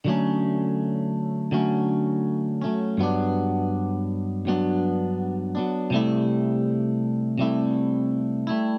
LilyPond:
\new Staff \with { instrumentName = "Clean electric guitar" } { \time 4/4 \key d \major \tempo 4 = 82 <d fis a cis'>2 <d fis a cis'>4. <fis a cis'>8 | <g, fis b d'>2 <g, fis b d'>4. <fis b d'>8 | <c g a e'>2 <c g a e'>4. <g a e'>8 | }